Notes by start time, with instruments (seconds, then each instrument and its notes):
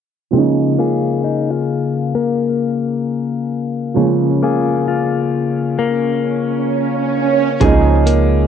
0.31 clean electric guitar C#3, felt piano F3 G#3 A#3
0.36 felt piano C#4 D#4
0.79 clean electric guitar A#3 F4 G#4
1.24 clean electric guitar D#4
1.50 clean electric guitar F4
2.15 clean electric guitar A#3
3.94 clean electric guitar C#3, felt piano F3 G#3 A#3
3.99 felt piano C#4 F4
4.43 clean electric guitar A#3 F4 G#4
4.88 clean electric guitar F4
5.79 clean electric guitar A#3
7.60 808-style bass C#2, clean electric guitar C#3 G#4, felt piano F3 G#3 A#3 C#4 D#4, kick, closed hi-hat
8.06 clean electric guitar A#3, closed hi-hat